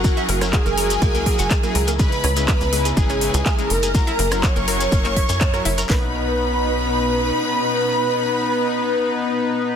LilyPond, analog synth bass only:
\new Staff \with { instrumentName = "Analog synth bass" } { \clef bass \time 4/4 \key b \major \tempo 4 = 123 fis,,16 r16 fis,,8. fis,,8. cis,8. fis,,16 r8 cis,8~ | cis,16 r16 cis,8. cis,8. gis,,8. cis,16 r8 fis,,8~ | fis,,16 r16 fis,,8. fis,,8. fis,,8. fis,8. fis,,8 | b,,2. r4 |
r1 | }